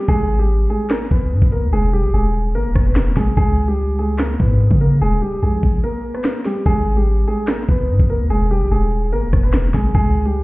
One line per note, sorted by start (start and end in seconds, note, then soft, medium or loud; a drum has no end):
0.08 0.68 G#1 loud
0.08 0.38 G#3 medium
0.08 0.37 G#4 loud
0.08 kick loud
0.08 closed hi-hat medium
0.39 0.69 G3 medium
0.39 0.68 G4 medium
0.39 closed hi-hat medium
0.70 0.87 G#3 medium
0.70 0.87 G#4 medium
0.70 closed hi-hat medium
0.90 1.08 A#3 medium
0.90 1.08 A#4 medium
0.90 snare loud
0.90 clap medium
0.90 closed hi-hat medium
1.11 1.33 G#1 loud
1.11 1.50 B3 medium
1.11 1.50 B4 medium
1.11 kick loud
1.22 closed hi-hat medium
1.32 1.41 G#2 loud
1.42 1.64 G#1 loud
1.42 kick loud
1.52 1.70 A#3 medium
1.52 1.69 A#4 medium
1.52 closed hi-hat medium
1.62 1.72 D#2 loud
1.73 2.05 E1 loud
1.73 1.90 G#3 medium
1.73 1.90 G#4 loud
1.73 closed hi-hat medium
1.93 2.11 G3 medium
1.93 2.10 G4 medium
2.04 2.13 B1 loud
2.04 closed hi-hat medium
2.10 2.56 D#1 loud
2.10 2.52 G#4 medium
2.10 closed hi-hat medium
2.15 2.53 G#3 medium
2.15 closed hi-hat medium
2.34 closed hi-hat medium
2.55 2.67 G#1 loud
2.55 2.84 A#3 medium
2.55 2.84 A#4 medium
2.55 closed hi-hat medium
2.65 2.75 D#1 loud
2.75 2.95 E1 loud
2.75 kick loud
2.75 cross-stick loud
2.86 2.95 B3 medium
2.86 2.94 B4 medium
2.86 closed hi-hat medium
2.95 3.16 E1 loud
2.95 3.14 A#3 medium
2.95 3.13 A#4 medium
2.95 snare loud
2.95 clap medium
3.17 3.36 B1 loud
3.17 3.34 G#3 medium
3.17 3.34 G#4 medium
3.17 kick medium
3.17 snare medium
3.17 closed hi-hat medium
3.27 closed hi-hat medium
3.37 4.36 C#2 loud
3.37 3.67 G#3 medium
3.37 3.66 G#4 loud
3.37 kick loud
3.37 closed hi-hat medium
3.68 3.97 G3 medium
3.68 3.97 G4 medium
3.68 closed hi-hat medium
3.99 4.16 G#3 medium
3.99 4.16 G#4 medium
3.99 closed hi-hat medium
4.18 4.37 A#3 medium
4.18 4.36 A#4 medium
4.18 snare loud
4.18 clap loud
4.18 closed hi-hat medium
4.40 4.69 G#2 loud
4.40 4.79 B3 medium
4.40 4.79 B4 medium
4.40 kick loud
4.50 closed hi-hat loud
4.71 5.00 C#3 medium
4.71 kick loud
4.81 4.98 A#3 medium
4.81 4.98 A#4 medium
4.81 closed hi-hat medium
5.01 5.21 D#1 loud
5.01 5.19 G#3 medium
5.01 5.19 G#4 loud
5.01 closed hi-hat medium
5.22 5.40 G3 medium
5.22 5.39 G4 medium
5.32 closed hi-hat soft
5.43 5.62 A#1 loud
5.43 5.82 G#3 medium
5.43 5.81 G#4 medium
5.43 closed hi-hat medium
5.63 5.83 A#1 loud
5.63 kick loud
5.63 closed hi-hat medium
5.84 6.13 A#3 medium
5.84 6.13 A#4 medium
5.84 closed hi-hat medium
6.14 6.23 B3 medium
6.14 6.23 B4 medium
6.14 cross-stick medium
6.14 closed hi-hat medium
6.24 6.42 A#3 medium
6.24 6.42 A#4 medium
6.24 snare loud
6.24 clap medium
6.45 6.63 G3 medium
6.45 6.62 G4 medium
6.45 snare medium
6.45 closed hi-hat medium
6.56 closed hi-hat medium
6.66 7.25 G#1 loud
6.66 6.95 G#3 medium
6.66 6.95 G#4 loud
6.66 kick loud
6.66 closed hi-hat medium
6.97 7.26 G3 medium
6.97 7.26 G4 medium
6.97 closed hi-hat medium
7.28 7.45 G#3 medium
7.28 7.45 G#4 medium
7.28 closed hi-hat medium
7.47 7.66 A#3 medium
7.47 7.65 A#4 medium
7.47 snare loud
7.47 clap loud
7.47 closed hi-hat medium
7.69 7.91 G#1 loud
7.69 8.08 B3 medium
7.69 8.07 B4 medium
7.69 kick medium
7.79 closed hi-hat medium
7.89 7.99 G#2 medium
7.99 8.22 G#1 loud
7.99 kick loud
8.10 8.27 A#3 medium
8.10 8.27 A#4 medium
8.10 closed hi-hat medium
8.20 8.30 D#2 loud
8.30 8.63 E1 loud
8.30 8.48 G#3 medium
8.30 8.47 G#4 medium
8.30 closed hi-hat medium
8.51 8.68 G3 medium
8.51 8.68 G4 medium
8.61 8.71 B1 loud
8.61 closed hi-hat medium
8.68 9.14 D#1 loud
8.68 9.10 G#4 medium
8.68 closed hi-hat medium
8.72 9.10 G#3 medium
8.72 closed hi-hat medium
8.92 closed hi-hat medium
9.12 9.24 G#1 loud
9.12 9.42 A#3 medium
9.12 9.42 A#4 medium
9.12 closed hi-hat medium
9.23 9.32 D#1 loud
9.33 9.53 E1 loud
9.33 kick loud
9.33 cross-stick loud
9.43 9.52 B3 medium
9.43 9.52 B4 medium
9.43 closed hi-hat medium
9.53 9.73 E1 loud
9.53 9.71 A#3 medium
9.53 9.71 A#4 medium
9.53 snare loud
9.53 clap medium
9.74 9.94 B1 loud
9.74 9.92 G#3 medium
9.74 9.91 G#4 medium
9.74 kick medium
9.74 snare medium
9.74 closed hi-hat medium
9.84 closed hi-hat medium
9.95 10.43 C#2 loud
9.95 10.24 G#3 medium
9.95 10.24 G#4 loud
9.95 kick loud
9.95 closed hi-hat medium
10.25 10.43 G3 medium
10.25 10.43 G4 medium
10.25 closed hi-hat medium